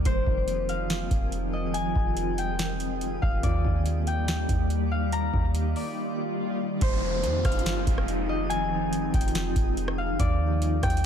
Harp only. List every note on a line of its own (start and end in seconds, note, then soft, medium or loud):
0.00 0.85 D5 medium
0.06 2.04 C5 loud
0.69 2.35 F5 medium
1.53 3.32 D#5 medium
1.74 2.44 G#5 loud
2.38 3.94 G5 medium
3.22 4.88 F5 medium
3.44 5.28 D5 medium
4.07 5.62 G5 medium
4.91 6.58 F5 medium
5.13 6.53 A#5 loud
5.76 7.61 D5 medium
6.82 8.80 C5 loud
7.45 9.11 F5 medium
8.29 10.08 D#5 medium
8.50 9.20 G#5 loud
9.14 10.69 G5 medium
9.98 11.06 F5 medium
10.20 11.06 D5 loud
10.83 11.06 G5 medium